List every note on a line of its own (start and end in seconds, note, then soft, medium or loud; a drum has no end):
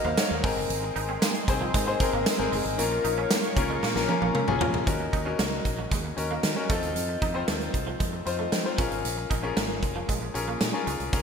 0.00 0.46 A#3 medium
0.00 0.44 D#4 medium
0.00 0.46 F#4 medium
0.00 0.32 A#4 medium
0.00 2.74 A#4 medium
0.00 0.05 C5 medium
0.00 0.31 D#5 medium
0.00 0.40 D#5 medium
0.00 0.40 F#5 medium
0.00 0.42 F6 medium
0.05 0.14 D#2 medium
0.05 0.13 A#3 medium
0.05 0.17 C5 medium
0.05 0.17 F5 medium
0.17 0.31 C#5 medium
0.17 0.30 F#5 medium
0.17 snare loud
0.17 closed hi-hat medium
0.17 tambourine medium
0.31 0.40 D#2 medium
0.31 0.43 A#4 medium
0.31 0.56 D#5 medium
0.43 0.54 G#1 loud
0.43 0.53 G#3 medium
0.43 1.29 C4 medium
0.43 1.29 D#4 medium
0.43 1.29 G#4 medium
0.43 1.29 A#4 loud
0.43 2.76 D#5 medium
0.43 2.76 G#5 medium
0.43 2.76 C6 medium
0.43 kick loud
0.43 open hi-hat medium
0.57 0.67 F#1 medium
0.70 0.89 G#1 loud
0.70 closed hi-hat loud
0.83 muted clean electric guitar stroke soft
0.96 1.16 G#1 loud
0.96 1.05 D#4 medium
0.96 closed hi-hat medium
1.09 1.18 C4 medium
1.22 1.31 A#3 medium
1.22 snare loud
1.22 closed hi-hat medium
1.22 tambourine medium
1.35 closed hi-hat soft
1.48 1.68 C2 medium
1.48 1.80 C4 medium
1.48 1.80 D#4 medium
1.48 1.80 G#4 medium
1.48 1.81 C5 loud
1.48 muted clean electric guitar stroke soft
1.48 kick medium
1.48 closed hi-hat medium
1.61 1.70 F3 medium
1.74 1.94 G#2 medium
1.74 1.83 G#3 medium
1.74 kick medium
1.74 closed hi-hat medium
1.87 1.98 C4 medium
1.87 1.98 D#4 medium
1.87 1.98 G#4 medium
1.87 1.98 C5 medium
1.87 muted clean electric guitar stroke soft
2.00 2.32 C4 medium
2.00 2.32 D#4 medium
2.00 2.32 G#4 medium
2.00 2.33 A#4 loud
2.00 kick medium
2.00 closed hi-hat medium
2.13 2.23 G#1 medium
2.13 2.22 A#3 medium
2.26 snare loud
2.26 closed hi-hat medium
2.26 tambourine medium
2.39 2.49 G#1 medium
2.39 2.71 C4 medium
2.39 2.71 D#4 medium
2.39 2.71 G#4 medium
2.39 2.72 A#4 medium
2.52 2.62 F#1 medium
2.52 2.61 G#3 medium
2.52 open hi-hat medium
2.65 2.75 G#1 medium
2.65 closed hi-hat medium
2.78 2.98 A#1 loud
2.78 3.42 A#3 medium
2.78 3.42 C#4 medium
2.78 3.43 F4 medium
2.78 4.85 A#4 medium
2.78 3.43 A#4 loud
2.78 4.85 C#5 medium
2.78 4.85 F5 medium
2.78 4.85 C#6 medium
2.78 closed hi-hat loud
2.92 muted clean electric guitar stroke soft
3.04 3.24 A#1 loud
3.04 3.13 D#4 medium
3.04 closed hi-hat medium
3.18 3.27 C#4 medium
3.31 3.39 A#3 medium
3.31 snare loud
3.31 closed hi-hat medium
3.31 tambourine medium
3.43 closed hi-hat soft
3.56 3.76 C#2 medium
3.56 3.88 A#3 medium
3.56 3.89 C#4 medium
3.56 3.89 F4 medium
3.56 3.89 A#4 medium
3.56 muted clean electric guitar stroke soft
3.56 kick medium
3.56 closed hi-hat medium
3.70 3.79 G#3 medium
3.83 3.92 A#2 medium
3.83 3.92 A#3 medium
3.83 snare medium
3.95 4.06 A#1 loud
3.95 4.06 A#3 medium
3.95 4.06 C#4 medium
3.95 4.07 F4 medium
3.95 4.07 A#4 loud
3.95 muted clean electric guitar stroke soft
3.95 snare medium
4.08 4.41 A#3 medium
4.08 4.41 C#4 medium
4.08 4.41 F4 medium
4.08 4.41 A#4 loud
4.08 high tom medium
4.22 4.32 A#1 medium
4.22 4.31 A#3 medium
4.22 high tom medium
4.35 4.46 F3 medium
4.35 4.46 C#4 medium
4.35 4.46 A#4 medium
4.35 muted fretless electric bass stroke soft
4.35 mid tom medium
4.47 4.58 A#1 medium
4.47 4.80 A#3 medium
4.47 4.80 C#4 medium
4.47 4.80 F4 medium
4.47 4.80 G#4 loud
4.47 mid tom medium
4.61 4.81 A#2 loud
4.61 4.70 F3 medium
4.61 4.83 F3 medium
4.61 4.83 C#4 medium
4.61 4.83 A#4 loud
4.61 floor tom loud
4.74 floor tom medium
4.86 5.07 D#2 medium
4.86 5.19 C#4 medium
4.86 5.19 D#4 medium
4.86 5.19 F#4 medium
4.86 5.19 A#4 medium
4.86 kick loud
4.86 closed hi-hat medium
5.00 muted clean electric guitar stroke soft
5.13 5.33 D#2 medium
5.13 5.22 D#4 medium
5.13 kick medium
5.13 closed hi-hat soft
5.25 6.01 C#4 medium
5.25 5.35 C#4 medium
5.25 6.01 D#4 medium
5.25 6.01 F#4 medium
5.25 6.01 A#4 medium
5.39 5.59 C#2 medium
5.39 5.48 A#3 medium
5.39 snare loud
5.39 closed hi-hat medium
5.65 5.85 A#1 medium
5.65 muted clean electric guitar stroke soft
5.65 kick medium
5.65 closed hi-hat medium
5.79 5.87 F#3 medium
5.91 6.11 D#2 medium
5.91 6.00 G#3 medium
5.91 kick medium
5.91 closed hi-hat medium
6.05 muted clean electric guitar stroke soft
6.17 6.37 D#2 medium
6.17 6.49 C#4 medium
6.17 6.49 D#4 medium
6.17 6.50 F#4 medium
6.17 6.50 A#4 medium
6.17 closed hi-hat medium
6.31 6.40 A#3 medium
6.43 6.53 D#3 medium
6.43 snare loud
6.43 closed hi-hat medium
6.56 6.69 C#4 medium
6.56 6.68 D#4 medium
6.56 6.70 F#4 medium
6.56 6.70 A#4 medium
6.69 6.80 F2 medium
6.69 6.79 A3 medium
6.69 7.23 C4 medium
6.69 7.23 D#4 medium
6.69 7.23 F4 medium
6.69 7.23 A4 medium
6.69 kick loud
6.69 closed hi-hat medium
6.82 6.93 D#2 medium
6.82 closed hi-hat soft
6.96 7.15 F2 loud
6.96 closed hi-hat medium
7.09 muted clean electric guitar stroke soft
7.22 7.42 F2 loud
7.22 7.31 D#4 medium
7.22 kick medium
7.22 closed hi-hat soft
7.34 8.09 C4 medium
7.34 7.44 C4 medium
7.34 8.09 D#4 medium
7.34 8.10 F4 medium
7.34 8.10 C5 medium
7.48 7.67 D#2 medium
7.48 7.57 A3 medium
7.48 snare loud
7.48 closed hi-hat medium
7.61 closed hi-hat soft
7.74 7.94 C2 medium
7.74 muted clean electric guitar stroke soft
7.74 kick medium
7.74 closed hi-hat medium
7.87 7.96 F3 medium
8.00 8.20 F2 medium
8.00 8.09 G#3 medium
8.00 kick medium
8.00 closed hi-hat medium
8.13 muted clean electric guitar stroke soft
8.25 8.46 F2 medium
8.25 8.58 C4 medium
8.25 8.58 D#4 medium
8.25 8.58 F4 medium
8.25 8.59 C5 medium
8.25 closed hi-hat medium
8.39 8.48 A3 medium
8.52 8.62 F3 medium
8.52 snare loud
8.52 closed hi-hat medium
8.65 8.78 C4 medium
8.65 8.78 D#4 medium
8.65 8.77 F4 medium
8.65 8.79 C5 medium
8.78 8.88 A#1 medium
8.78 8.87 F3 medium
8.78 9.31 C#4 medium
8.78 9.32 F4 medium
8.78 9.32 G#4 medium
8.78 9.32 A#4 medium
8.78 kick loud
8.78 closed hi-hat medium
8.91 9.01 G#1 medium
8.91 closed hi-hat soft
9.05 9.24 A#1 loud
9.05 closed hi-hat loud
9.17 muted clean electric guitar stroke soft
9.30 9.50 A#1 medium
9.30 9.39 D#4 medium
9.30 kick medium
9.30 closed hi-hat medium
9.43 10.18 C#4 medium
9.43 9.52 C#4 medium
9.43 10.18 F4 medium
9.43 10.18 G#4 medium
9.43 10.19 A#4 medium
9.57 9.83 G#1 medium
9.57 9.65 A#3 medium
9.57 snare loud
9.57 closed hi-hat medium
9.83 10.02 F1 medium
9.83 muted clean electric guitar stroke soft
9.83 kick medium
9.83 closed hi-hat medium
9.96 10.05 F3 medium
10.09 10.28 A#1 medium
10.09 10.18 G#3 medium
10.09 kick medium
10.09 closed hi-hat medium
10.22 muted clean electric guitar stroke soft
10.34 10.54 A#1 medium
10.34 10.67 C#4 medium
10.34 10.67 F4 medium
10.34 10.67 G#4 medium
10.34 10.67 A#4 medium
10.34 closed hi-hat medium
10.48 10.57 A#3 medium
10.61 10.71 A#2 medium
10.61 snare loud
10.61 closed hi-hat medium
10.73 11.06 C#4 medium
10.73 11.06 F4 medium
10.73 11.06 G#4 medium
10.73 11.06 A#4 medium
10.87 10.97 C#2 medium
10.87 10.96 G#3 medium
10.87 closed hi-hat medium
11.00 11.10 C2 medium
11.00 closed hi-hat soft
11.13 11.22 C#2 loud
11.13 11.22 C#4 medium
11.13 11.22 F4 medium
11.13 11.22 G#4 medium
11.13 11.22 A#4 medium
11.13 kick loud
11.13 closed hi-hat medium